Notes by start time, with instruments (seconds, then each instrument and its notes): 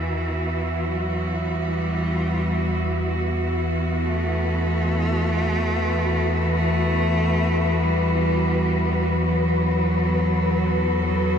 Already playing: synth drone E2 E3, cello E3, cello section E3 B3 E4 F#4, synth texture E5
0.86 cello F#3
1.51 cello G3
4.03 cello A3, synth texture B4
6.56 cello A3
7.83 cello G3
9.14 cello F#3
9.93 cello section A4
11.05 cello F#3